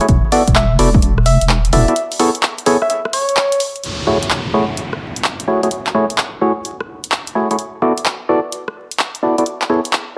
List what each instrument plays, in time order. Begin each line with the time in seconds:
0.01 synth stab A3 E4 F#4 G#4 C#5, closed hi-hat
0.09 wobble bass E1, kick, closed hi-hat
0.32 synth stab B3 E4 F#4 A4 D5, cross-stick, open hi-hat
0.48 wobble bass E1, kick, closed hi-hat
0.56 soft synth lead E5, clap
0.79 wobble bass E1, synth stab B3 E4 F#4 A4 D5, open hi-hat
0.95 kick
1.02 closed hi-hat
1.18 cross-stick
1.26 soft synth lead E5, open hi-hat
1.41 wobble bass E1, closed hi-hat
1.49 clap
1.65 closed hi-hat
1.73 wobble bass E1, synth stab B3 E4 F#4 A4 D5, soft synth lead E5, open hi-hat
1.88 synth stab B3 E4 F#4 A4 D5, closed hi-hat
1.96 closed hi-hat
2.12 open hi-hat
2.19 synth stab B3 E4 G#4 A4 C#5, cross-stick, open hi-hat
2.35 closed hi-hat
2.43 clap
2.58 closed hi-hat
2.66 synth stab B3 E4 G#4 A4 C#5, open hi-hat
2.82 soft synth lead E5, cross-stick
2.90 soft synth lead E5, closed hi-hat
3.05 cross-stick
3.13 soft synth lead C#5, open hi-hat
3.29 closed hi-hat
3.37 clap
3.52 closed hi-hat
3.60 open hi-hat
3.76 closed hi-hat
3.84 closed hi-hat, downlifter
4.07 synth stab A3 E4 F#4 G#4 C#5, cross-stick
4.23 closed hi-hat
4.30 clap
4.54 synth stab A3 E4 F#4 G#4 C#5
4.77 closed hi-hat
4.93 cross-stick
5.16 closed hi-hat
5.24 clap
5.40 closed hi-hat
5.48 synth stab A3 E4 F#4 G#4 C#5
5.63 synth stab A3 E4 F#4 G#4 C#5, closed hi-hat
5.71 closed hi-hat
5.87 clap
5.95 synth stab A3 E4 F#4 G#4 C#5, cross-stick
6.10 closed hi-hat
6.18 clap
6.41 synth stab A3 E4 F#4 G#4 C#5
6.65 closed hi-hat
6.80 cross-stick
7.04 closed hi-hat
7.12 clap
7.27 closed hi-hat
7.35 synth stab A3 E4 F#4 G#4 C#5
7.51 synth stab A3 E4 F#4 G#4 C#5, closed hi-hat
7.59 closed hi-hat
7.82 synth stab B3 E4 F#4 A4 D5, cross-stick
7.98 closed hi-hat
8.06 clap
8.29 synth stab B3 E4 F#4 A4 D5
8.52 closed hi-hat
8.68 cross-stick
8.91 closed hi-hat
8.99 clap
9.15 closed hi-hat
9.23 synth stab B3 E4 F#4 A4 D5
9.38 synth stab B3 E4 F#4 A4 D5, closed hi-hat
9.46 closed hi-hat
9.62 clap
9.70 synth stab B3 E4 G#4 A4 C#5, cross-stick
9.85 closed hi-hat
9.93 clap